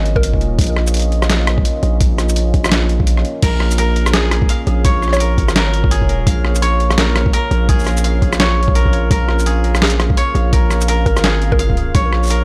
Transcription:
Already playing: 808-style bass G#1, ambient pad A#3 C#4 F4 D#5
0.06 closed hi-hat
0.16 synth pluck A#4, kick
0.23 closed hi-hat
0.34 kick
0.41 closed hi-hat
0.59 808-style bass A#1, kick, closed hi-hat
0.61 closed hi-hat
0.64 closed hi-hat
0.67 closed hi-hat
0.77 cross-stick
0.87 shaker
0.94 closed hi-hat
0.97 closed hi-hat
0.99 closed hi-hat
1.02 closed hi-hat
1.12 closed hi-hat
1.22 cross-stick, shaker
1.30 snare, closed hi-hat
1.47 cross-stick, closed hi-hat
1.58 kick
1.65 closed hi-hat
1.83 808-style bass A#1, closed hi-hat
2.01 kick, closed hi-hat
2.18 cross-stick, closed hi-hat, shaker
2.29 shaker
2.36 closed hi-hat
2.54 808-style bass A#1, kick, closed hi-hat
2.64 cross-stick, shaker
2.69 cross-stick, snare, closed hi-hat
2.89 closed hi-hat
3.00 kick
3.07 closed hi-hat
3.17 cross-stick
3.25 closed hi-hat
3.42 808-style bass A#1, koto A#4, ambient pad C#5, kick, closed hi-hat, crash
3.60 cross-stick
3.71 shaker
3.78 koto A#4, closed hi-hat
3.96 closed hi-hat
4.06 cross-stick, shaker
4.14 synth pluck G#4, koto G#4, snare, closed hi-hat
4.31 cross-stick, closed hi-hat
4.42 kick
4.49 koto F5, closed hi-hat
4.67 808-style bass A#1, closed hi-hat
4.85 koto C#5, kick, closed hi-hat
5.02 cross-stick, shaker
5.08 cross-stick
5.13 synth pluck C#5, cross-stick, shaker
5.17 koto A#4, cross-stick, closed hi-hat
5.38 808-style bass G#1, kick, closed hi-hat
5.48 cross-stick, shaker
5.56 koto A#4, snare, closed hi-hat
5.74 closed hi-hat
5.84 kick
5.91 koto G#4, closed hi-hat
6.02 kick
6.09 closed hi-hat
6.27 808-style bass A#1, koto F5, kick, closed hi-hat
6.45 cross-stick
6.55 shaker
6.62 koto C#5, closed hi-hat
6.80 closed hi-hat
6.91 cross-stick, shaker
6.98 koto A#4, snare, closed hi-hat
7.16 cross-stick, closed hi-hat
7.26 kick
7.33 koto A#4, closed hi-hat
7.51 808-style bass A#1, closed hi-hat
7.69 koto G#4, kick, closed hi-hat
7.79 shaker
7.84 cross-stick, closed hi-hat, shaker
7.87 shaker
7.90 shaker
7.92 shaker
7.97 shaker
8.04 koto F5, closed hi-hat
8.22 808-style bass A#1, kick, closed hi-hat
8.33 cross-stick, shaker
8.40 koto C#5, snare, closed hi-hat
8.63 closed hi-hat
8.68 kick
8.75 koto A#4, closed hi-hat
8.86 kick
8.93 closed hi-hat
9.11 808-style bass A#1, koto A#4, ambient pad F5, kick, closed hi-hat
9.29 cross-stick
9.39 shaker
9.46 koto G#4, closed hi-hat
9.64 closed hi-hat
9.75 cross-stick, shaker
9.82 synth pluck G#4, koto F5, snare, closed hi-hat
9.85 closed hi-hat
9.87 closed hi-hat
9.90 closed hi-hat
10.00 cross-stick, closed hi-hat
10.10 kick
10.17 koto C#5, closed hi-hat
10.35 808-style bass A#1, closed hi-hat
10.53 koto A#4, kick, closed hi-hat
10.71 cross-stick, shaker
10.81 shaker
10.88 koto A#4, closed hi-hat
11.06 808-style bass G#1, synth pluck A#4, kick, closed hi-hat
11.17 cross-stick, shaker
11.24 koto G#4, snare, closed hi-hat
11.42 closed hi-hat
11.52 synth pluck A#4, kick
11.59 koto F5, closed hi-hat
11.70 kick
11.77 closed hi-hat
11.95 808-style bass A#1, koto C#5, kick, closed hi-hat
12.13 cross-stick
12.23 shaker
12.25 shaker
12.27 shaker
12.29 koto A#4, closed hi-hat, shaker

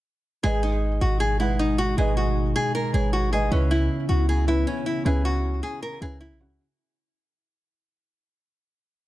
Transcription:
0.43 808-style bass G#1, analog synth pad B2 G#3 D#4, felt piano G#3 G#4 B4 D#5, nylon-string guitar G#4
0.63 nylon-string guitar D#4
1.01 808-style bass G#1, nylon-string guitar F#4
1.20 nylon-string guitar G#4
1.39 felt piano G#3 G#4 B4 F#5, nylon-string guitar E4
1.59 nylon-string guitar D#4
1.78 nylon-string guitar F#4
1.97 808-style bass G#1, felt piano G#3 G#4 B4 D#5, nylon-string guitar G#4
2.17 nylon-string guitar F#4
2.56 nylon-string guitar G#4
2.75 nylon-string guitar A#4
2.93 808-style bass G#1, felt piano G#3 G#4 B4 C#5, nylon-string guitar G#4
3.13 nylon-string guitar F#4
3.31 felt piano G#3 G#4 B4 D#5, nylon-string guitar G#4
3.51 808-style bass C#2, felt piano C#3 C#4 E4 B4, analog synth pad C#3 B3 E4, nylon-string guitar C#4
3.71 nylon-string guitar E4
4.09 808-style bass C#2, nylon-string guitar F#4
4.29 nylon-string guitar G#4
4.47 felt piano C#3 C#4 E4 B4, nylon-string guitar E4
4.67 nylon-string guitar C#4
4.86 nylon-string guitar E4
5.05 808-style bass C#2, felt piano C#3 C#4 E4 B4, nylon-string guitar G#4
5.25 nylon-string guitar F#4
5.63 nylon-string guitar G#4
5.82 nylon-string guitar A#4
6.01 808-style bass C#2, felt piano C#3 C#4 E4 B4, nylon-string guitar G#4
6.21 nylon-string guitar E4
6.30 808-style bass B1
6.39 felt piano C#3 C#4 E4 F#4
6.45 808-style bass C#2

